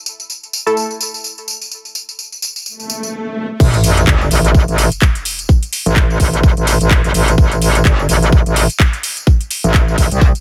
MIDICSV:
0, 0, Header, 1, 6, 480
1, 0, Start_track
1, 0, Key_signature, 0, "minor"
1, 0, Tempo, 472441
1, 1737, Time_signature, 4, 2, 24, 8
1, 10570, End_track
2, 0, Start_track
2, 0, Title_t, "Synth stab"
2, 0, Program_c, 0, 62
2, 676, Note_on_c, 0, 57, 80
2, 676, Note_on_c, 0, 64, 71
2, 676, Note_on_c, 0, 69, 94
2, 896, Note_off_c, 0, 57, 0
2, 896, Note_off_c, 0, 64, 0
2, 896, Note_off_c, 0, 69, 0
2, 10570, End_track
3, 0, Start_track
3, 0, Title_t, "Wobble bass"
3, 0, Program_c, 1, 39
3, 3658, Note_on_c, 1, 33, 103
3, 4121, Note_off_c, 1, 33, 0
3, 4138, Note_on_c, 1, 31, 89
3, 4361, Note_off_c, 1, 31, 0
3, 4378, Note_on_c, 1, 33, 101
3, 4734, Note_off_c, 1, 33, 0
3, 4756, Note_on_c, 1, 33, 94
3, 4974, Note_off_c, 1, 33, 0
3, 5956, Note_on_c, 1, 33, 95
3, 6281, Note_off_c, 1, 33, 0
3, 6298, Note_on_c, 1, 33, 103
3, 6654, Note_off_c, 1, 33, 0
3, 6676, Note_on_c, 1, 33, 101
3, 6894, Note_off_c, 1, 33, 0
3, 6916, Note_on_c, 1, 33, 106
3, 7134, Note_off_c, 1, 33, 0
3, 7155, Note_on_c, 1, 33, 98
3, 7241, Note_off_c, 1, 33, 0
3, 7257, Note_on_c, 1, 33, 102
3, 7481, Note_off_c, 1, 33, 0
3, 7497, Note_on_c, 1, 33, 100
3, 7961, Note_off_c, 1, 33, 0
3, 7978, Note_on_c, 1, 31, 90
3, 8201, Note_off_c, 1, 31, 0
3, 8217, Note_on_c, 1, 33, 102
3, 8574, Note_off_c, 1, 33, 0
3, 8597, Note_on_c, 1, 33, 101
3, 8814, Note_off_c, 1, 33, 0
3, 9797, Note_on_c, 1, 33, 90
3, 10121, Note_off_c, 1, 33, 0
3, 10138, Note_on_c, 1, 33, 107
3, 10254, Note_off_c, 1, 33, 0
3, 10277, Note_on_c, 1, 36, 100
3, 10494, Note_off_c, 1, 36, 0
3, 10570, End_track
4, 0, Start_track
4, 0, Title_t, "Sub drop"
4, 0, Program_c, 2, 103
4, 3657, Note_on_c, 2, 60, 78
4, 5577, Note_off_c, 2, 60, 0
4, 10570, End_track
5, 0, Start_track
5, 0, Title_t, "Swell"
5, 0, Program_c, 3, 103
5, 2697, Note_on_c, 3, 60, 74
5, 3657, Note_off_c, 3, 60, 0
5, 10570, End_track
6, 0, Start_track
6, 0, Title_t, "Drums"
6, 62, Note_on_c, 9, 54, 75
6, 163, Note_off_c, 9, 54, 0
6, 201, Note_on_c, 9, 54, 33
6, 302, Note_off_c, 9, 54, 0
6, 302, Note_on_c, 9, 54, 46
6, 403, Note_off_c, 9, 54, 0
6, 441, Note_on_c, 9, 54, 24
6, 542, Note_off_c, 9, 54, 0
6, 542, Note_on_c, 9, 54, 83
6, 644, Note_off_c, 9, 54, 0
6, 681, Note_on_c, 9, 54, 33
6, 782, Note_off_c, 9, 54, 0
6, 782, Note_on_c, 9, 54, 48
6, 884, Note_off_c, 9, 54, 0
6, 921, Note_on_c, 9, 54, 23
6, 1022, Note_off_c, 9, 54, 0
6, 1022, Note_on_c, 9, 54, 75
6, 1123, Note_off_c, 9, 54, 0
6, 1160, Note_on_c, 9, 54, 32
6, 1262, Note_off_c, 9, 54, 0
6, 1262, Note_on_c, 9, 54, 45
6, 1363, Note_off_c, 9, 54, 0
6, 1401, Note_on_c, 9, 54, 23
6, 1502, Note_off_c, 9, 54, 0
6, 1502, Note_on_c, 9, 54, 78
6, 1603, Note_off_c, 9, 54, 0
6, 1641, Note_on_c, 9, 54, 35
6, 1742, Note_off_c, 9, 54, 0
6, 1742, Note_on_c, 9, 54, 45
6, 1843, Note_off_c, 9, 54, 0
6, 1881, Note_on_c, 9, 54, 22
6, 1982, Note_off_c, 9, 54, 0
6, 1982, Note_on_c, 9, 54, 75
6, 2083, Note_off_c, 9, 54, 0
6, 2121, Note_on_c, 9, 54, 33
6, 2222, Note_off_c, 9, 54, 0
6, 2222, Note_on_c, 9, 54, 43
6, 2324, Note_off_c, 9, 54, 0
6, 2361, Note_on_c, 9, 54, 23
6, 2462, Note_off_c, 9, 54, 0
6, 2462, Note_on_c, 9, 54, 78
6, 2564, Note_off_c, 9, 54, 0
6, 2601, Note_on_c, 9, 54, 35
6, 2702, Note_off_c, 9, 54, 0
6, 2702, Note_on_c, 9, 54, 45
6, 2804, Note_off_c, 9, 54, 0
6, 2841, Note_on_c, 9, 54, 21
6, 2942, Note_off_c, 9, 54, 0
6, 2942, Note_on_c, 9, 54, 75
6, 3044, Note_off_c, 9, 54, 0
6, 3081, Note_on_c, 9, 54, 31
6, 3183, Note_off_c, 9, 54, 0
6, 3657, Note_on_c, 9, 36, 122
6, 3657, Note_on_c, 9, 49, 100
6, 3662, Note_on_c, 9, 54, 48
6, 3759, Note_off_c, 9, 36, 0
6, 3759, Note_off_c, 9, 49, 0
6, 3764, Note_off_c, 9, 54, 0
6, 3796, Note_on_c, 9, 42, 55
6, 3801, Note_on_c, 9, 54, 24
6, 3897, Note_on_c, 9, 46, 111
6, 3898, Note_off_c, 9, 42, 0
6, 3902, Note_off_c, 9, 54, 0
6, 3902, Note_on_c, 9, 54, 84
6, 3999, Note_off_c, 9, 46, 0
6, 4004, Note_off_c, 9, 54, 0
6, 4036, Note_on_c, 9, 42, 70
6, 4041, Note_on_c, 9, 54, 35
6, 4138, Note_off_c, 9, 42, 0
6, 4138, Note_on_c, 9, 36, 122
6, 4139, Note_on_c, 9, 39, 123
6, 4142, Note_off_c, 9, 54, 0
6, 4142, Note_on_c, 9, 54, 46
6, 4239, Note_off_c, 9, 36, 0
6, 4241, Note_off_c, 9, 39, 0
6, 4243, Note_off_c, 9, 54, 0
6, 4281, Note_on_c, 9, 54, 24
6, 4378, Note_on_c, 9, 46, 108
6, 4382, Note_off_c, 9, 54, 0
6, 4382, Note_on_c, 9, 54, 82
6, 4479, Note_off_c, 9, 46, 0
6, 4484, Note_off_c, 9, 54, 0
6, 4516, Note_on_c, 9, 42, 71
6, 4521, Note_on_c, 9, 54, 35
6, 4618, Note_off_c, 9, 42, 0
6, 4618, Note_on_c, 9, 36, 116
6, 4622, Note_off_c, 9, 54, 0
6, 4622, Note_on_c, 9, 54, 47
6, 4719, Note_off_c, 9, 36, 0
6, 4724, Note_off_c, 9, 54, 0
6, 4756, Note_on_c, 9, 42, 39
6, 4761, Note_on_c, 9, 54, 23
6, 4857, Note_on_c, 9, 46, 108
6, 4858, Note_off_c, 9, 42, 0
6, 4862, Note_off_c, 9, 54, 0
6, 4862, Note_on_c, 9, 54, 76
6, 4959, Note_off_c, 9, 46, 0
6, 4963, Note_off_c, 9, 54, 0
6, 4996, Note_on_c, 9, 42, 66
6, 5000, Note_on_c, 9, 54, 33
6, 5097, Note_off_c, 9, 42, 0
6, 5098, Note_on_c, 9, 36, 117
6, 5099, Note_on_c, 9, 39, 126
6, 5102, Note_off_c, 9, 54, 0
6, 5102, Note_on_c, 9, 54, 47
6, 5199, Note_off_c, 9, 36, 0
6, 5201, Note_off_c, 9, 39, 0
6, 5203, Note_off_c, 9, 54, 0
6, 5236, Note_on_c, 9, 42, 56
6, 5240, Note_on_c, 9, 54, 22
6, 5337, Note_off_c, 9, 42, 0
6, 5337, Note_on_c, 9, 46, 114
6, 5341, Note_off_c, 9, 54, 0
6, 5341, Note_on_c, 9, 54, 84
6, 5438, Note_off_c, 9, 46, 0
6, 5443, Note_off_c, 9, 54, 0
6, 5476, Note_on_c, 9, 42, 73
6, 5480, Note_on_c, 9, 54, 35
6, 5577, Note_off_c, 9, 42, 0
6, 5578, Note_on_c, 9, 36, 124
6, 5582, Note_off_c, 9, 54, 0
6, 5582, Note_on_c, 9, 54, 45
6, 5679, Note_off_c, 9, 36, 0
6, 5683, Note_off_c, 9, 54, 0
6, 5716, Note_on_c, 9, 42, 58
6, 5721, Note_on_c, 9, 54, 22
6, 5817, Note_on_c, 9, 46, 110
6, 5818, Note_off_c, 9, 42, 0
6, 5822, Note_off_c, 9, 54, 0
6, 5822, Note_on_c, 9, 54, 75
6, 5919, Note_off_c, 9, 46, 0
6, 5923, Note_off_c, 9, 54, 0
6, 5956, Note_on_c, 9, 42, 68
6, 5961, Note_on_c, 9, 54, 34
6, 6057, Note_off_c, 9, 42, 0
6, 6057, Note_on_c, 9, 36, 117
6, 6060, Note_on_c, 9, 39, 118
6, 6062, Note_off_c, 9, 54, 0
6, 6062, Note_on_c, 9, 54, 46
6, 6159, Note_off_c, 9, 36, 0
6, 6161, Note_off_c, 9, 39, 0
6, 6164, Note_off_c, 9, 54, 0
6, 6201, Note_on_c, 9, 54, 23
6, 6297, Note_on_c, 9, 36, 66
6, 6297, Note_on_c, 9, 46, 112
6, 6302, Note_off_c, 9, 54, 0
6, 6302, Note_on_c, 9, 54, 77
6, 6399, Note_off_c, 9, 36, 0
6, 6399, Note_off_c, 9, 46, 0
6, 6404, Note_off_c, 9, 54, 0
6, 6436, Note_on_c, 9, 42, 73
6, 6441, Note_on_c, 9, 54, 33
6, 6537, Note_on_c, 9, 36, 127
6, 6538, Note_off_c, 9, 42, 0
6, 6542, Note_off_c, 9, 54, 0
6, 6542, Note_on_c, 9, 54, 47
6, 6639, Note_off_c, 9, 36, 0
6, 6643, Note_off_c, 9, 54, 0
6, 6676, Note_on_c, 9, 42, 38
6, 6680, Note_on_c, 9, 54, 21
6, 6777, Note_off_c, 9, 42, 0
6, 6777, Note_on_c, 9, 46, 111
6, 6782, Note_off_c, 9, 54, 0
6, 6782, Note_on_c, 9, 54, 77
6, 6879, Note_off_c, 9, 46, 0
6, 6883, Note_off_c, 9, 54, 0
6, 6916, Note_on_c, 9, 42, 66
6, 6921, Note_on_c, 9, 54, 33
6, 7018, Note_off_c, 9, 42, 0
6, 7018, Note_on_c, 9, 36, 127
6, 7020, Note_on_c, 9, 39, 127
6, 7022, Note_off_c, 9, 54, 0
6, 7022, Note_on_c, 9, 54, 44
6, 7119, Note_off_c, 9, 36, 0
6, 7121, Note_off_c, 9, 39, 0
6, 7124, Note_off_c, 9, 54, 0
6, 7156, Note_on_c, 9, 42, 56
6, 7161, Note_on_c, 9, 54, 21
6, 7257, Note_on_c, 9, 46, 111
6, 7258, Note_off_c, 9, 42, 0
6, 7262, Note_off_c, 9, 54, 0
6, 7262, Note_on_c, 9, 54, 79
6, 7359, Note_off_c, 9, 46, 0
6, 7364, Note_off_c, 9, 54, 0
6, 7396, Note_on_c, 9, 42, 71
6, 7401, Note_on_c, 9, 54, 33
6, 7498, Note_off_c, 9, 42, 0
6, 7498, Note_on_c, 9, 36, 127
6, 7502, Note_off_c, 9, 54, 0
6, 7502, Note_on_c, 9, 54, 43
6, 7599, Note_off_c, 9, 36, 0
6, 7603, Note_off_c, 9, 54, 0
6, 7636, Note_on_c, 9, 42, 52
6, 7641, Note_on_c, 9, 54, 23
6, 7737, Note_on_c, 9, 46, 114
6, 7738, Note_off_c, 9, 42, 0
6, 7742, Note_off_c, 9, 54, 0
6, 7742, Note_on_c, 9, 54, 76
6, 7839, Note_off_c, 9, 46, 0
6, 7844, Note_off_c, 9, 54, 0
6, 7876, Note_on_c, 9, 42, 70
6, 7881, Note_on_c, 9, 54, 34
6, 7978, Note_off_c, 9, 42, 0
6, 7978, Note_on_c, 9, 36, 125
6, 7980, Note_on_c, 9, 39, 123
6, 7982, Note_off_c, 9, 54, 0
6, 7982, Note_on_c, 9, 54, 43
6, 8079, Note_off_c, 9, 36, 0
6, 8081, Note_off_c, 9, 39, 0
6, 8084, Note_off_c, 9, 54, 0
6, 8121, Note_on_c, 9, 54, 22
6, 8218, Note_on_c, 9, 46, 110
6, 8222, Note_off_c, 9, 54, 0
6, 8222, Note_on_c, 9, 54, 78
6, 8319, Note_off_c, 9, 46, 0
6, 8324, Note_off_c, 9, 54, 0
6, 8357, Note_on_c, 9, 42, 66
6, 8361, Note_on_c, 9, 54, 32
6, 8458, Note_off_c, 9, 42, 0
6, 8458, Note_on_c, 9, 36, 126
6, 8463, Note_off_c, 9, 54, 0
6, 8463, Note_on_c, 9, 54, 44
6, 8559, Note_off_c, 9, 36, 0
6, 8564, Note_off_c, 9, 54, 0
6, 8597, Note_on_c, 9, 42, 38
6, 8602, Note_on_c, 9, 54, 20
6, 8698, Note_off_c, 9, 42, 0
6, 8698, Note_on_c, 9, 46, 116
6, 8703, Note_off_c, 9, 54, 0
6, 8703, Note_on_c, 9, 54, 76
6, 8800, Note_off_c, 9, 46, 0
6, 8805, Note_off_c, 9, 54, 0
6, 8837, Note_on_c, 9, 42, 65
6, 8842, Note_on_c, 9, 54, 32
6, 8938, Note_off_c, 9, 42, 0
6, 8938, Note_on_c, 9, 36, 125
6, 8940, Note_on_c, 9, 39, 122
6, 8943, Note_off_c, 9, 54, 0
6, 9039, Note_off_c, 9, 36, 0
6, 9042, Note_off_c, 9, 39, 0
6, 9076, Note_on_c, 9, 42, 52
6, 9081, Note_on_c, 9, 54, 20
6, 9178, Note_off_c, 9, 42, 0
6, 9178, Note_on_c, 9, 46, 116
6, 9183, Note_off_c, 9, 54, 0
6, 9183, Note_on_c, 9, 54, 75
6, 9279, Note_off_c, 9, 46, 0
6, 9284, Note_off_c, 9, 54, 0
6, 9317, Note_on_c, 9, 42, 68
6, 9321, Note_on_c, 9, 54, 33
6, 9418, Note_off_c, 9, 42, 0
6, 9418, Note_on_c, 9, 36, 122
6, 9422, Note_off_c, 9, 54, 0
6, 9422, Note_on_c, 9, 54, 45
6, 9519, Note_off_c, 9, 36, 0
6, 9524, Note_off_c, 9, 54, 0
6, 9556, Note_on_c, 9, 42, 52
6, 9561, Note_on_c, 9, 54, 22
6, 9657, Note_on_c, 9, 46, 112
6, 9658, Note_off_c, 9, 42, 0
6, 9662, Note_off_c, 9, 54, 0
6, 9662, Note_on_c, 9, 54, 78
6, 9759, Note_off_c, 9, 46, 0
6, 9764, Note_off_c, 9, 54, 0
6, 9797, Note_on_c, 9, 42, 65
6, 9801, Note_on_c, 9, 54, 35
6, 9898, Note_off_c, 9, 42, 0
6, 9898, Note_on_c, 9, 36, 123
6, 9900, Note_on_c, 9, 39, 121
6, 9902, Note_off_c, 9, 54, 0
6, 9902, Note_on_c, 9, 54, 44
6, 9999, Note_off_c, 9, 36, 0
6, 10001, Note_off_c, 9, 39, 0
6, 10004, Note_off_c, 9, 54, 0
6, 10041, Note_on_c, 9, 54, 22
6, 10138, Note_on_c, 9, 36, 65
6, 10138, Note_on_c, 9, 46, 113
6, 10142, Note_off_c, 9, 54, 0
6, 10142, Note_on_c, 9, 54, 77
6, 10239, Note_off_c, 9, 36, 0
6, 10239, Note_off_c, 9, 46, 0
6, 10244, Note_off_c, 9, 54, 0
6, 10276, Note_on_c, 9, 42, 66
6, 10281, Note_on_c, 9, 54, 34
6, 10378, Note_off_c, 9, 42, 0
6, 10378, Note_on_c, 9, 36, 127
6, 10382, Note_off_c, 9, 54, 0
6, 10382, Note_on_c, 9, 54, 45
6, 10479, Note_off_c, 9, 36, 0
6, 10484, Note_off_c, 9, 54, 0
6, 10517, Note_on_c, 9, 42, 35
6, 10521, Note_on_c, 9, 54, 22
6, 10570, Note_off_c, 9, 42, 0
6, 10570, Note_off_c, 9, 54, 0
6, 10570, End_track
0, 0, End_of_file